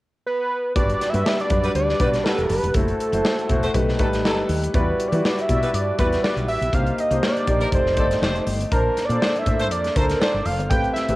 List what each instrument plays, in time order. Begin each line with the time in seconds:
0.27 analog synth lead B4
0.76 fretless electric bass G1, grand piano G3 D4 F#4 B4, analog synth lead D5, kick, closed hi-hat
0.89 closed hi-hat
1.01 snare, closed hi-hat
1.09 grand piano G3, analog synth lead E5
1.14 fretless electric bass G2, grand piano D4 F#4 B4, closed hi-hat
1.26 horn section G3 F#4 B4, snare
1.40 analog synth lead D5, closed hi-hat
1.50 fretless electric bass F#2, grand piano G3 D4 F#4 B4, kick, closed hi-hat
1.64 horn section G3 F#4 B4, closed hi-hat
1.75 fretless electric bass D2, analog synth lead D5, closed hi-hat
1.89 snare
1.99 fretless electric bass B1, grand piano G3 D4 F#4 B4, horn section G3 F#4 B4, kick, closed hi-hat
2.14 snare, closed hi-hat
2.24 horn section G3 F#4 B4, analog synth lead A4, snare
2.38 fretless electric bass E1, closed hi-hat
2.49 fretless electric bass F#1, analog synth lead B4, open hi-hat
2.63 fretless electric bass E1, closed hi-hat
2.74 fretless electric bass F#1, grand piano A3 E4 F#4 C5, analog synth lead A4, kick, closed hi-hat
2.88 closed hi-hat
3.00 closed hi-hat
3.12 fretless electric bass F#1, grand piano A3 E4 F#4 C5, closed hi-hat
3.24 horn section A3 F#4 C5, snare
3.39 closed hi-hat
3.49 fretless electric bass E1, grand piano A3 E4 F#4 C5, kick, closed hi-hat
3.63 horn section A3 F#4 C5, closed hi-hat
3.74 fretless electric bass B1, grand piano A3 D#4 G4 B4, kick, closed hi-hat
3.89 snare
3.99 fretless electric bass A1, horn section F#3 D#4 A4, grand piano G3 A3 D#4 B4, kick, closed hi-hat
4.13 snare, closed hi-hat
4.24 fretless electric bass G1, horn section F#3 D#4 A4, snare
4.49 fretless electric bass D#2, open hi-hat
4.63 closed hi-hat
4.74 fretless electric bass E2, grand piano G3 E4 F#4 D5, analog synth lead B4, kick, closed hi-hat
5.00 closed hi-hat
5.08 analog synth lead D5
5.12 fretless electric bass E3, grand piano G3 E4 F#4 B4, closed hi-hat
5.24 horn section G3 F#4 B4, snare
5.38 analog synth lead E5, closed hi-hat
5.49 fretless electric bass B2, grand piano G3 E4 F#4 D5, kick, closed hi-hat
5.63 horn section G3 F#4 B4, closed hi-hat
5.73 fretless electric bass G2, analog synth lead D5, closed hi-hat
5.99 fretless electric bass E2, grand piano G3 E4 F#4 D5, horn section G3 F#4 B4, analog synth lead B4, kick, closed hi-hat
6.13 snare, closed hi-hat
6.24 horn section G3 F#4 B4, analog synth lead D5, snare
6.36 fretless electric bass B1, closed hi-hat
6.47 fretless electric bass A1, analog synth lead E5, open hi-hat
6.61 fretless electric bass B1, closed hi-hat
6.73 fretless electric bass C2, grand piano A#3 D4 G4 C5, analog synth lead F5, kick, closed hi-hat
6.79 grand piano D#4
6.87 closed hi-hat
6.98 analog synth lead D#5, closed hi-hat
7.10 fretless electric bass C2, grand piano A#3 D4 G4 C5, closed hi-hat
7.18 grand piano D#4
7.23 horn section G3 D#4 A#4, analog synth lead D5, snare
7.37 closed hi-hat
7.47 fretless electric bass A#1, grand piano A#3 D#4 G4 C5, kick, closed hi-hat
7.61 horn section G3 D#4 A#4, closed hi-hat
7.72 fretless electric bass F1, grand piano A3 D#4 G4 D5, analog synth lead C5, kick, closed hi-hat
7.86 snare
7.97 fretless electric bass G1, horn section D#3 D4 A4, grand piano A3 D#4 G4 D5, kick, closed hi-hat
8.11 snare, closed hi-hat
8.22 fretless electric bass F1, horn section A3 G4 C5, snare
8.36 closed hi-hat
8.46 fretless electric bass G1, open hi-hat
8.61 closed hi-hat
8.72 fretless electric bass A#1, grand piano A#3 D4 C5 A5, analog synth lead A#4, kick, closed hi-hat
8.97 snare, closed hi-hat
9.05 analog synth lead D5
9.09 fretless electric bass A#2, grand piano A#3 D4 A4 C5, closed hi-hat
9.21 horn section A3 F4 C5, snare
9.36 analog synth lead E5, closed hi-hat
9.46 fretless electric bass A2, grand piano A#3 D4 A4 C5, kick, closed hi-hat
9.59 horn section A3 F4 C5, closed hi-hat
9.70 fretless electric bass F2, analog synth lead D5, closed hi-hat
9.84 snare, closed hi-hat
9.95 fretless electric bass D2, horn section A3 F4 C5, grand piano A#3 D4 A4 C5, analog synth lead A#4, kick, closed hi-hat
10.09 snare, closed hi-hat
10.20 horn section A3 F4 C5, analog synth lead D5, snare
10.34 fretless electric bass G1
10.45 fretless electric bass F1, analog synth lead F5, open hi-hat
10.59 fretless electric bass G1, closed hi-hat
10.70 fretless electric bass A1, grand piano A3 C4 G4 B4, analog synth lead G5, kick, closed hi-hat
10.84 closed hi-hat
10.93 analog synth lead E5, snare, closed hi-hat
11.08 fretless electric bass A1, grand piano A3 C4 G4 B4, closed hi-hat